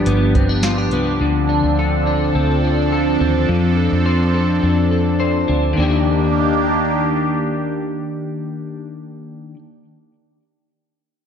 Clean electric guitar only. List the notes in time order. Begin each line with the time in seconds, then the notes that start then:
Already playing: G2 D4 G4
0.07 B3
0.35 C4
0.49 D4
0.64 F4
0.78 G4
0.93 B3
1.21 D3
1.49 D4
1.79 A4
2.07 D4
2.35 C4
2.64 D4
2.92 A4
3.20 C4
3.49 F3
3.77 A4
4.06 C5
4.34 A4
4.63 D4
4.91 A4
5.20 C5
5.48 D4
5.73 D#3 A#3
5.80 D4 G4